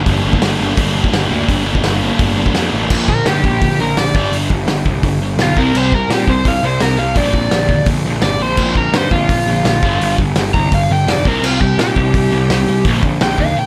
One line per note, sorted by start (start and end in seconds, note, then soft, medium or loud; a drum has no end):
0.06 0.19 G1 medium
0.06 0.24 G2 loud
0.06 0.24 D3 loud
0.06 0.25 G3 loud
0.06 0.25 A#3 loud
0.06 0.26 D4 loud
0.06 kick loud
0.06 open hi-hat medium
0.24 0.37 G1 medium
0.24 0.42 G2 medium
0.24 0.42 D3 medium
0.24 0.42 G3 medium
0.24 0.43 A#3 medium
0.24 0.44 D4 medium
0.33 kick medium
0.42 0.54 G1 medium
0.42 0.59 G2 medium
0.42 0.59 D3 loud
0.42 0.60 G3 loud
0.42 0.60 A#3 loud
0.42 0.61 D4 loud
0.42 snare loud
0.42 open hi-hat medium
0.59 0.72 G1 medium
0.59 0.76 G2 medium
0.59 0.77 D3 medium
0.59 0.77 G3 loud
0.59 0.78 A#3 medium
0.59 0.79 D4 medium
0.77 1.03 G1 medium
0.77 0.93 G2 loud
0.77 0.93 D3 medium
0.77 0.94 G3 medium
0.77 0.95 A#3 loud
0.77 0.96 D4 loud
0.77 kick loud
0.77 open hi-hat medium
0.94 1.11 G2 medium
0.94 1.12 D3 medium
0.94 1.12 G3 medium
0.94 1.13 A#3 medium
0.94 1.14 D4 loud
1.04 kick medium
1.13 1.26 G1 medium
1.13 1.29 G2 medium
1.13 1.29 D3 medium
1.13 1.29 G3 medium
1.13 1.30 A#3 medium
1.13 1.31 D4 medium
1.13 snare loud
1.13 open hi-hat medium
1.30 1.43 D2 medium
1.30 1.47 G2 medium
1.30 1.47 D3 medium
1.30 1.48 G3 medium
1.30 1.48 A#3 loud
1.30 1.48 D4 medium
1.48 1.61 G1 medium
1.48 1.64 G2 medium
1.48 1.65 D3 medium
1.48 1.65 G3 medium
1.48 1.65 A#3 loud
1.48 1.66 D4 loud
1.48 kick loud
1.48 open hi-hat medium
1.65 1.78 G1 medium
1.65 1.82 G2 medium
1.65 1.83 D3 medium
1.65 1.83 G3 medium
1.65 1.83 A#3 medium
1.65 1.84 D4 medium
1.75 kick medium
1.83 2.09 G1 medium
1.83 2.01 G2 loud
1.83 2.02 D3 loud
1.83 2.02 G3 loud
1.83 2.02 A#3 loud
1.83 2.02 D4 loud
1.83 snare loud
1.83 open hi-hat medium
2.02 2.17 G2 medium
2.02 2.19 D3 medium
2.02 2.18 G3 medium
2.02 2.19 A#3 loud
2.02 2.20 D4 medium
2.19 2.45 G1 loud
2.19 2.36 G2 medium
2.19 2.36 D3 medium
2.19 2.37 G3 medium
2.19 2.37 A#3 medium
2.19 2.37 D4 loud
2.19 kick loud
2.19 open hi-hat medium
2.37 2.54 G2 medium
2.37 2.55 D3 medium
2.37 2.55 G3 medium
2.37 2.55 A#3 loud
2.37 2.56 D4 loud
2.46 kick medium
2.54 2.68 F2 medium
2.54 2.71 G2 medium
2.54 2.72 D3 medium
2.54 2.72 G3 medium
2.54 2.72 A#3 medium
2.54 2.73 D4 medium
2.54 snare loud
2.54 open hi-hat medium
2.72 2.86 A1 medium
2.72 2.89 G2 medium
2.72 2.89 D3 medium
2.72 2.90 G3 medium
2.72 2.90 A#3 medium
2.72 2.90 D4 medium
2.90 3.19 A#1 medium
2.90 3.07 A#2 medium
2.90 3.07 D3 medium
2.90 3.08 F3 medium
2.90 kick loud
2.90 crash loud
3.08 3.25 A#2 medium
3.08 3.25 D3 medium
3.08 3.26 A#4 loud
3.08 kick medium
3.26 3.40 G2 medium
3.26 3.43 A#2 medium
3.26 3.43 D3 loud
3.26 3.78 G4 medium
3.26 snare loud
3.26 open hi-hat medium
3.44 3.58 A#1 medium
3.44 3.60 A#2 medium
3.44 3.61 D3 medium
3.44 kick medium
3.62 3.76 A#1 medium
3.62 3.78 A#2 medium
3.62 3.78 D3 medium
3.62 kick loud
3.62 open hi-hat medium
3.79 3.93 A#1 medium
3.79 3.95 A#2 medium
3.79 3.96 D3 medium
3.79 3.97 A#4 medium
3.97 4.11 A#1 loud
3.97 4.13 A#2 medium
3.97 4.13 D3 medium
3.97 4.15 D5 medium
3.97 snare loud
3.97 open hi-hat medium
4.14 4.29 G1 medium
4.14 4.32 G2 medium
4.14 4.32 D3 loud
4.14 4.32 G3 loud
4.14 4.33 D5 medium
4.14 kick loud
4.32 4.46 G1 medium
4.32 4.49 G2 medium
4.32 4.49 D3 medium
4.32 4.50 G3 loud
4.32 open hi-hat medium
4.50 4.64 G1 medium
4.50 4.66 G2 medium
4.50 4.66 D3 medium
4.50 kick medium
4.67 4.82 G1 medium
4.67 4.84 G2 medium
4.67 4.84 D3 medium
4.67 snare loud
4.67 open hi-hat medium
4.85 5.00 C2 medium
4.85 5.02 G2 medium
4.85 5.02 D3 medium
4.85 kick medium
5.03 5.18 G1 medium
5.03 5.20 G2 medium
5.03 5.20 D3 medium
5.03 kick loud
5.03 open hi-hat medium
5.21 5.35 G1 medium
5.21 5.38 G2 medium
5.21 5.38 D3 medium
5.38 5.53 B1 medium
5.38 5.55 G2 medium
5.38 5.55 D3 medium
5.38 snare loud
5.38 open hi-hat medium
5.43 5.58 F4 loud
5.56 5.71 C2 medium
5.56 5.73 C3 loud
5.56 5.74 G3 medium
5.56 5.74 C4 loud
5.56 5.77 A#4 medium
5.56 kick loud
5.73 6.03 C2 medium
5.73 5.91 C3 medium
5.73 5.91 G3 medium
5.73 5.92 C4 medium
5.73 5.93 C5 medium
5.73 crash loud
5.92 6.09 C3 medium
5.92 6.09 G3 medium
5.92 6.11 A#4 medium
5.92 kick medium
6.09 6.24 A#2 medium
6.09 6.26 C3 medium
6.09 6.26 G3 medium
6.09 snare loud
6.09 open hi-hat medium
6.14 6.29 G4 medium
6.27 6.42 C2 loud
6.27 6.44 C3 medium
6.27 6.44 G3 medium
6.27 6.46 C5 medium
6.27 kick medium
6.45 6.60 C2 medium
6.45 6.62 C3 medium
6.45 6.62 G3 medium
6.45 6.64 F5 medium
6.45 kick loud
6.45 open hi-hat medium
6.63 6.77 C2 medium
6.63 6.79 C3 medium
6.63 6.79 G3 medium
6.63 6.82 C5 medium
6.80 6.96 C2 medium
6.80 6.97 C3 medium
6.80 6.97 G3 medium
6.80 6.99 A#4 loud
6.80 snare loud
6.80 open hi-hat medium
6.99 7.13 C2 medium
6.99 7.15 C3 medium
6.99 7.15 G3 medium
6.99 7.17 F5 medium
7.15 7.30 A#1 medium
7.15 7.33 A#2 medium
7.15 7.32 D3 loud
7.15 7.33 G3 loud
7.15 7.86 D5 loud
7.15 kick loud
7.15 open hi-hat medium
7.33 7.48 A#1 medium
7.33 7.50 A#2 medium
7.33 7.50 D3 medium
7.33 kick medium
7.51 7.66 A#1 medium
7.51 7.68 A#2 medium
7.51 7.68 D3 medium
7.51 snare loud
7.51 open hi-hat medium
7.69 7.83 D#2 loud
7.69 7.85 A#2 medium
7.69 7.86 D3 medium
7.69 kick medium
7.86 8.01 A#1 loud
7.86 8.03 A#2 medium
7.86 8.03 D3 medium
7.86 kick loud
7.86 open hi-hat medium
8.05 8.19 A#1 medium
8.05 8.22 A#2 medium
8.05 8.22 D3 loud
8.22 8.37 G1 medium
8.22 8.38 A#2 medium
8.22 8.39 D3 medium
8.22 8.42 D5 loud
8.22 snare loud
8.22 open hi-hat medium
8.39 8.55 A#1 medium
8.39 8.56 A#2 medium
8.39 8.56 D3 medium
8.39 8.76 C5 medium
8.57 8.87 A#1 medium
8.57 8.74 A#2 medium
8.57 8.74 D3 medium
8.57 8.75 F3 loud
8.57 kick loud
8.57 crash medium
8.75 8.92 A#2 medium
8.75 8.92 D3 medium
8.75 8.96 A#4 medium
8.75 kick medium
8.93 9.08 G2 medium
8.93 9.10 A#2 medium
8.93 9.10 D3 medium
8.93 9.12 C5 medium
8.93 snare loud
8.93 open hi-hat medium
9.11 9.26 A#1 medium
9.11 9.27 A#2 medium
9.11 9.28 D3 medium
9.11 10.15 F4 loud
9.11 kick medium
9.29 9.44 A#1 medium
9.29 9.45 A#2 medium
9.29 9.45 D3 medium
9.29 kick loud
9.29 open hi-hat medium
9.47 9.61 A#1 medium
9.47 9.64 A#2 medium
9.47 9.64 D3 medium
9.65 9.79 A#1 loud
9.65 9.81 A#2 medium
9.65 9.81 D3 medium
9.65 snare loud
9.65 open hi-hat medium
9.83 9.97 G1 medium
9.83 9.99 G2 medium
9.83 9.99 D3 medium
9.83 10.00 G3 loud
9.83 kick loud
10.00 10.15 G1 medium
10.00 10.17 G2 loud
10.00 10.17 D3 medium
10.00 10.18 G3 loud
10.00 open hi-hat medium
10.18 10.33 G1 medium
10.18 10.35 G2 medium
10.18 10.35 D3 medium
10.18 kick loud
10.36 10.51 G1 medium
10.36 10.53 G2 medium
10.36 10.53 D3 medium
10.36 snare loud
10.36 open hi-hat medium
10.54 10.69 C2 medium
10.54 10.71 G2 medium
10.54 10.71 D3 medium
10.54 10.72 A#5 loud
10.54 kick medium
10.72 10.86 G1 loud
10.72 10.88 G2 medium
10.72 10.88 D3 medium
10.72 10.90 F5 loud
10.72 kick loud
10.72 open hi-hat medium
10.89 11.04 G1 loud
10.89 11.06 G2 medium
10.89 11.06 D3 medium
10.89 11.08 G5 loud
11.07 11.21 F1 loud
11.07 11.24 G2 medium
11.07 11.24 D3 medium
11.07 11.26 D5 medium
11.07 snare loud
11.07 open hi-hat medium
11.25 11.40 C2 medium
11.25 11.42 C3 loud
11.25 11.43 G3 loud
11.25 11.43 C4 medium
11.25 11.44 A#4 medium
11.25 kick loud
11.42 11.71 C2 medium
11.42 11.59 C3 loud
11.42 11.59 G3 loud
11.42 11.60 C4 loud
11.42 11.61 F4 medium
11.42 crash loud
11.60 11.76 C3 medium
11.60 11.77 G3 medium
11.60 11.78 G4 medium
11.60 kick medium
11.78 11.93 A#2 medium
11.78 11.95 C3 medium
11.78 11.95 G3 loud
11.78 12.84 G4 loud
11.78 snare loud
11.78 open hi-hat medium
11.96 12.11 C2 loud
11.96 12.12 C3 medium
11.96 12.12 G3 medium
11.96 kick medium
12.14 12.28 C2 medium
12.14 12.30 C3 medium
12.14 12.30 G3 medium
12.14 kick loud
12.14 open hi-hat medium
12.32 12.47 C2 medium
12.32 12.48 C3 medium
12.32 12.48 G3 medium
12.49 12.64 C2 medium
12.49 12.66 C3 medium
12.49 12.67 G3 medium
12.49 snare loud
12.49 open hi-hat medium
12.67 12.81 C2 medium
12.67 12.84 C3 medium
12.67 12.84 G3 medium
12.84 12.99 A#1 medium
12.84 13.01 A#2 medium
12.84 13.01 D3 medium
12.84 13.02 G3 loud
12.84 kick loud
12.84 open hi-hat medium
13.03 13.17 A#1 medium
13.03 13.19 A#2 medium
13.03 13.19 D3 medium
13.03 kick medium
13.21 13.35 A#1 medium
13.21 13.37 A#2 medium
13.21 13.37 D3 medium
13.21 13.39 G5 medium
13.21 snare loud
13.21 open hi-hat medium
13.38 13.53 D#2 medium
13.38 13.55 A#2 medium
13.38 13.55 D3 medium
13.38 13.57 F5 loud
13.38 kick medium
13.56 13.66 A#2 medium
13.56 13.66 D3 medium
13.56 13.66 G5 medium